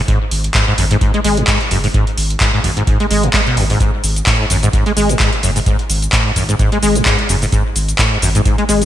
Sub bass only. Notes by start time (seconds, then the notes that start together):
0.31 G#1
0.78 G#1
1.24 G#1
1.71 F#1
2.18 G#1
2.64 G#1
3.11 G#1
3.57 G#1
4.04 G#1
4.50 G#1
4.97 G#1
5.43 F#1
5.90 G#1
6.36 G#1
6.83 G#1
7.29 F#1
7.76 G#1
8.22 G#1
8.69 G#1